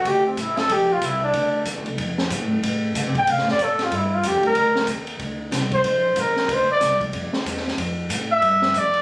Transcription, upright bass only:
X:1
M:4/4
L:1/8
Q:"Swing" 1/4=186
K:Dm
V:1 name="Upright bass" clef=bass
D,,2 A,,,2 B,,,2 C,,2 | D,,2 (3E,, D,, C,, F,,2 (3B,, A,, F,, | A,,2 (3D, C, A,, (3C, A,, F,, A,,2 | G,,2 (3F,, D,, B,,, D,,2 _E,,2 |
D,,2 C,,2 B,,,2 B,,,2 | D,, z C,,2 F,, z E,,2 | F,,2 A,,2 G,,2 F,,2 |]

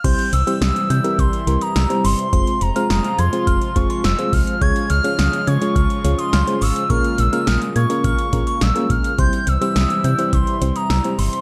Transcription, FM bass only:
X:1
M:4/4
L:1/16
Q:1/4=105
K:Cphr
V:1 name="FM bass" clef=bass
C,, z C,, z C,, z C, z C,, z C,, z C,, z G,,, z | F,,, z F,,, z F,,, z F,, z F,,, z F,,, z F,,, z C,, z | D,, z D,, z D,, z D, z D,, z D,, z D,, z A,,, z | B,,, z B,,, z B,,, z B,, z B,,, z B,,, z B,,, z B,,, z |
C,, z C,, z C,, z C, z C,, z C,, z C,, z G,,, z |]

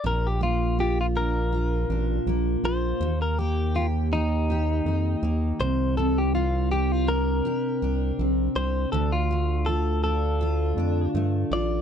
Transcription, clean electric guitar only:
X:1
M:4/4
L:1/16
Q:"Swing 16ths" 1/4=81
K:Bb
V:1 name="Clean electric guitar"
B G F2 G F B8 c2- | c B G2 F2 E8 c2 | A G F2 G F B8 c2 | A F3 A2 A6 z2 d2 |]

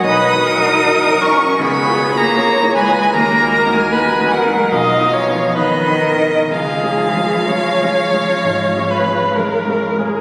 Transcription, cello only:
X:1
M:4/4
L:1/16
Q:1/4=73
K:C#mix
V:1 name="Cello" clef=bass
D6 C2 B,3 A,3 G,2 | A,3 G,3 F,2 E,4 D,4 | E,12- E,2 z2 |]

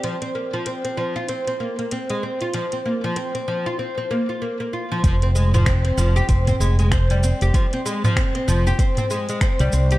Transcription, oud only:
X:1
M:4/4
L:1/16
Q:"Swing 16ths" 1/4=96
K:Fm
V:1 name="Oud"
F, C B, F, C C F, F C C B, B, C A, C F | F, C B, F, C C F, F C C B, F B, B, F F, | F, C A, F, C C F, G C C A, A, C G, C G | F, C A, F, C C F, G C C A, A, C G, C G |]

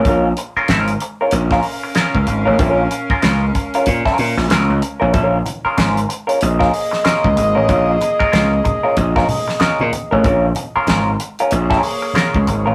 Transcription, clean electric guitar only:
X:1
M:4/4
L:1/16
Q:"Swing 16ths" 1/4=94
K:Bbm
V:1 name="Clean electric guitar"
[A,DFB] z2 [A,DFB] [A,DFB] z2 [A,DFB] z [A,DFB] z2 [A,DFB] z2 [A,DFB] | [A,DFB] z2 [A,DFB] [A,DFB] z2 [A,DFB] z [A,DFB] z2 [A,DFB] z2 [A,DFB] | [A,DFB] z2 [A,DFB] [A,DFB] z2 [A,DFB] z [A,DFB] z2 [A,DFB] z2 [A,DFB] | [A,DFB] z2 [A,DFB] [A,DFB] z2 [A,DFB] z [A,DFB] z2 [A,DFB] z2 [A,DFB] |
[A,DFB] z2 [A,DFB] [A,DFB] z2 [A,DFB] z [A,DFB] z2 [A,DFB] z2 [A,DFB] |]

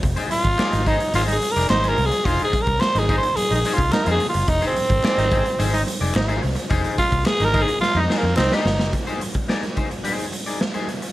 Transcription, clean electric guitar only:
X:1
M:4/4
L:1/16
Q:1/4=108
K:Fdor
V:1 name="Clean electric guitar"
z [EAc] z2 [EAd] z [EAc] z [EAc] z2 [EAd] z [EAc] z2 | [EAc]2 z4 [EAc] z3 [EAc] z2 [EAc] z2 | z [EAc] z2 [EAd] z [EAc] z [EAc] z2 [EAd] z [EAc] z2 | [EAc]2 z4 [EAc] z3 [EAc] z2 [EAc] z2 |
z [EAc] z2 [EAd] z [EAc] z [EAc] z2 [EAd] z [EAc] z2 |]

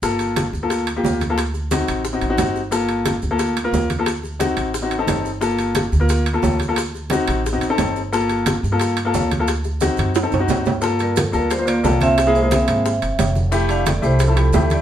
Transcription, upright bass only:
X:1
M:4/4
L:1/8
Q:1/4=178
K:Gm
V:1 name="Upright bass" clef=bass
G,,,3 D,,3 D,,2- | D,,3 A,,,2 A,,, G,,,2- | G,,,3 D,,3 D,,2- | D,,3 A,,,3 G,,,2- |
G,,,3 D,,3 D,,2- | D,,3 A,,,2 A,,, G,,,2- | G,,,3 G,,3 D,,2- | D,,3 ^F,,2 F,, G,,2- |
G,,3 D,,3 C,,2- | C,,3 ^G,,,2 ^F,,, =F,,,2- | F,,,3 C,,3 D,,2 |]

